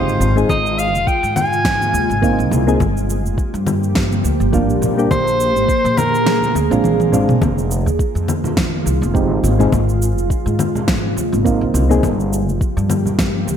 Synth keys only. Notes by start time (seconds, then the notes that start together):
Already playing: G#3 C4 D#4 G4
0.36 G#3 C4 D#4 G#4
2.22 A#3 C4 D#4 F4
2.67 A#3 C4 D#4 G#4
4.52 G3 A#3 D4 F4
4.97 G3 A#3 D4 G4
6.70 G#3 C4 D4 F4
7.12 G#3 C4 D4 F4
9.14 G#3 C4 D#4 G4
9.59 G#3 C4 D#4 G#4
11.44 A#3 C4 D#4 F4
11.89 A#3 C4 D#4 G#4